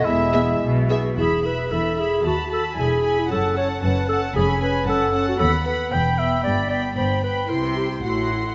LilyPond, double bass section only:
\new Staff \with { instrumentName = "Double bass section" } { \clef bass \time 2/4 \key e \major \tempo 4 = 114 e,,4 b,,4 | e,,4 e,,4 | dis,4 e,,4 | fis,,4 fis,,4 |
eis,,4 fis,,4 | \key g \major dis,4 e,,4 | g,,4 g,,4 | c,4 a,,4 | }